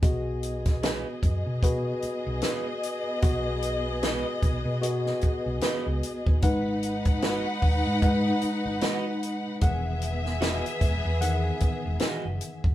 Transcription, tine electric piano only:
X:1
M:4/4
L:1/8
Q:"Swing 16ths" 1/4=75
K:B
V:1 name="Tine electric piano"
[B,FGd]3 z [B,FGB]3 z | [B,FGd]3 z [B,FGd]3 z | [G,DBf]3 z [G,DBf]3 z | [D,E,Gf]3 z [D,E,Gf]3 z |]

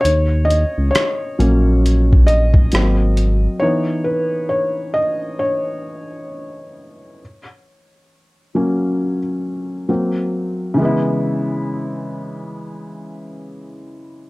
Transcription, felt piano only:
X:1
M:4/4
L:1/8
Q:"Swing 16ths" 1/4=67
K:C#dor
V:1 name="Felt piano"
c d c3 d3 | c B c d c4- | c6 z2 | [C,E,G,B,E]8 |]
V:2 name="Felt piano"
z3 [F,A,C]3 [F,A,^B,]2 | [E,B,D]3 z4 z | z3 [F,A,C] z2 [F,A,^B,]2 | z8 |]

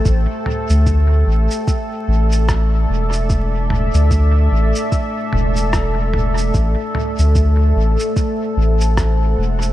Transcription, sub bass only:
X:1
M:4/4
L:1/16
Q:"Swing 16ths" 1/4=74
K:Clyd
V:1 name="Sub bass" clef=bass
A,,, z2 D,,3 A,,, z3 A,,,4 E,,,2- | E,,,3 D,,3 A,,, z3 E,,,6 | A,,, z2 D,,3 A,,, z3 A,,,4 E,,,2 |]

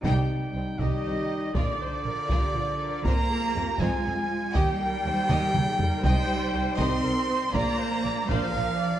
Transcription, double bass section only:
X:1
M:6/8
L:1/8
Q:3/8=80
K:Cm
V:1 name="Double bass section" clef=bass
C,, z C,, C,, C,, z | B,,, z B,,, B,,, B,,, z | F,, z F,, F,, F,, z | E,, z E,, E,, E,, z |
C,, z C,, C,, C,, z | B,,, z B,,, B,,, B,,, z |]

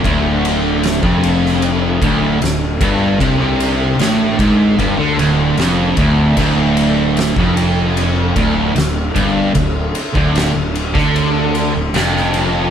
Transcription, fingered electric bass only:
X:1
M:4/4
L:1/16
Q:1/4=76
K:Dm
V:1 name="Fingered electric bass" clef=bass
D,,,4- D,,, F,,,4- F,,, D,,,2 D,,,2 G,,,2 | C,, C,,3 A,,,2 ^G,,,2 =G,,, D,, D,,,2 F,,,2 D,,,2 | D,,,4- D,,, F,,,4- F,,, D,,,2 D,,,2 G,,,2 | D,,,2 z D,,,2 D,,,2 D,,4 D,,, F,,,4 |]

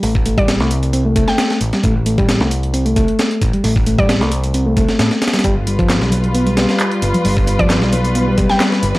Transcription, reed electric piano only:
X:1
M:4/4
L:1/16
Q:1/4=133
K:Am
V:1 name="Reed electric piano" clef=bass
A, z A, G,2 A, z2 C A, A,4 z G, | A, z A, G,2 A, z2 C A, A,4 z G, | A, z A, G,2 A, z2 C A, A,4 z G, | G, z G, F,2 G, z2 B, G, G,4 z F, |
G, z G, F,2 G, z2 B, G, G,4 z F, |]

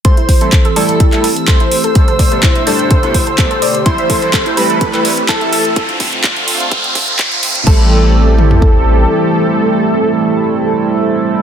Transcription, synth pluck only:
X:1
M:4/4
L:1/16
Q:1/4=126
K:Am
V:1 name="Synth pluck"
A E z A A A d z E e A z A E z A | A A d z E e A z A E z A A A d z | E e A z A E z A A A d z E e A z | z16 |
A2 z12 z2 | z16 |]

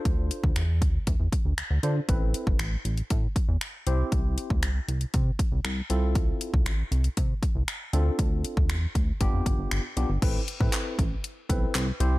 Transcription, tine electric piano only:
X:1
M:4/4
L:1/16
Q:1/4=118
K:Am
V:1 name="Tine electric piano"
[DFAc]4 z8 z2 [DFAc] z | [CEAB]4 z8 z2 [CEGc]2- | [CEGc]4 z8 z2 [CEFA]2- | [CEFA]4 z8 z2 [CDFA]2- |
[CDFA]4 z4 [B,DFG]4- [B,DFG] z [B,DFG] z | [CEAB] z2 [CEAB]3 z4 [CEAB]3 z [CEGc]2 |]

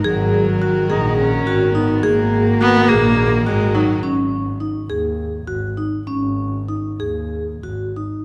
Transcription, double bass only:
X:1
M:7/8
L:1/8
Q:1/4=105
K:G#m
V:1 name="Double bass" clef=bass
G,,,3 A,,,2 G,,,2 | G,,,3 A,,,2 G,,,2 | G,,,3 D,,2 G,,, z | G,,,3 D,,2 G,,, z |]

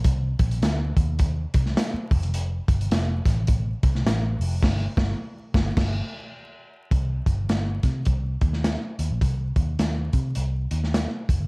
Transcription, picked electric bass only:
X:1
M:4/4
L:1/16
Q:"Swing" 1/4=105
K:Cm
V:1 name="Picked electric bass" clef=bass
C,,2 B,,,2 D,,2 E,,4 C,,2 z2 F,,,2- | F,,,2 G,,,2 F,,,2 =A,,,4 C,,2 A,,,2 F,,,2 | G,,,2 G,,,2 z2 G,,,2 G,,,2 z6 | C,,2 G,,,2 G,,,2 C,2 C,,2 E,,3 z E,, B,,, |
C,,2 E,,2 E,,2 C,2 C,,2 E,,3 z F,,, G,,, |]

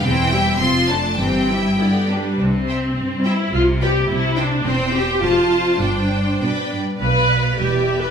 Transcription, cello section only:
X:1
M:2/4
L:1/8
Q:1/4=104
K:C
V:1 name="Cello section" clef=bass
E,,2 F,,2 | G,,3 z | C,2 G,,2 | C,2 C,2 |
E,,2 F,,2 | G,,2 B,, G,, | B,,2 E,,2 |]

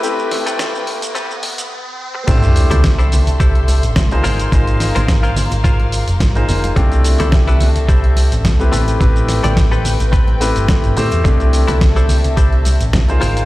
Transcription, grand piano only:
X:1
M:4/4
L:1/16
Q:"Swing 16ths" 1/4=107
K:C
V:1 name="Grand piano"
[A,CEGB]12 z4 | [A,DEGc]12- [A,DEGc] [_B,_EF_Ac]3 | [_B,_EF_Ac]12- [B,EFAc] [B,EFAc]3 | [A,CDEG]12- [A,CDEG] [A,CEGB]3 |
[A,CEGB]8- [A,CEGB]2 [A,CEGB]4 [A,CEGc]2 | [A,CDEG]12- [A,CDEG] [_B,_EF_Ac]3 |]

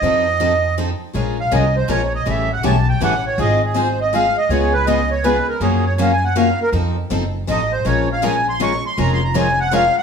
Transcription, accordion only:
X:1
M:3/4
L:1/8
Q:"Swing" 1/4=161
K:Bbm
V:1 name="Accordion"
e4 z2 | z f e c d e | =e g =a =g _g ^c | e A c e f e |
d _c e d c B | A d (3f a g f B | z4 e c | d f a c' d' c' |
(3b c' b a g f g |]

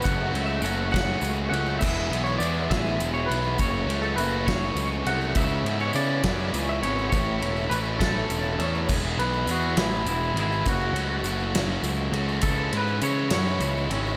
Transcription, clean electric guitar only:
X:1
M:6/8
L:1/16
Q:3/8=68
K:F#m
V:1 name="Clean electric guitar"
f3 e f2 f4 f2 | e3 c d2 e3 c B2 | c3 A B2 c4 f2 | e3 c d4- d e c2 |
c4 B2 A4 z2 | z2 B2 F2 E2 E2 E2 | F4 z8 | A2 B2 c2 c6 |]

